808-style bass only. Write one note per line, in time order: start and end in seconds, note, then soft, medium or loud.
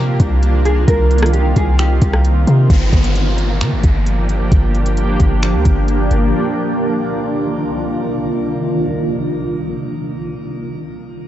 0.00 0.18 C3 loud
0.20 0.85 C2 loud
0.88 1.54 C2 loud
1.57 2.00 C2 loud
2.02 2.45 C2 loud
2.47 2.69 C3 loud
2.70 2.92 G1 loud
2.93 3.63 G1 loud
3.61 3.74 D3 loud
3.72 3.83 G1 loud
3.84 4.49 G1 loud
4.52 5.17 G1 loud
5.20 5.56 G1 loud
5.54 5.65 D2 loud
5.66 6.09 G1 loud
6.11 6.33 G1 loud